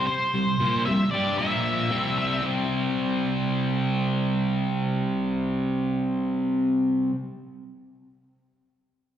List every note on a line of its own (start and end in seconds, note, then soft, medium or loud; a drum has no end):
0.06 0.82 C5 medium
0.06 muted distorted electric guitar stroke medium
0.34 0.55 C3 medium
0.34 0.55 G3 medium
0.59 0.85 A#2 loud
0.59 0.86 F3 medium
0.59 0.86 A#3 loud
0.86 1.08 C3 medium
0.86 1.08 G3 medium
0.86 1.11 E5 medium
1.11 1.38 G3 loud
1.11 1.38 D4 loud
1.11 1.39 G4 loud
1.11 1.38 D5 medium
1.38 1.90 A#2 loud
1.38 1.91 F3 loud
1.38 1.91 A#3 loud
1.38 2.17 E5 medium
1.91 2.41 C3 medium
1.91 2.43 G3 loud
1.91 2.43 C4 loud
2.18 2.42 E5 medium
2.42 7.11 C3 medium
2.42 7.13 G3 loud
2.46 7.15 C4 loud